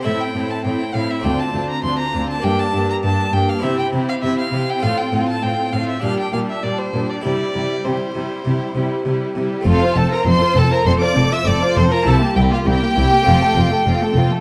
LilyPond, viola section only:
\new Staff \with { instrumentName = "Viola section" } { \time 4/4 \key f \major \tempo 4 = 100 c'8 c'8 c'8 c'8 c'8 c'8 c'8 c'8 | bes8 bes8 bes8 bes8 c'8 c'8 c'8 c'8 | c'8 c'8 c'8 c'8 g8 g8 g8 g8 | g8 g8 g8 g8 g8 g8 g8 g8 |
c'16 f'16 c'16 f'16 c'16 f'16 c'16 f'16 c'16 f'16 c'16 f'16 c'16 f'16 c'16 f'16 | c'16 bes16 c'16 bes16 c'16 bes16 c'16 bes16 c'16 a16 c'16 a16 c'16 a16 c'16 a16 | }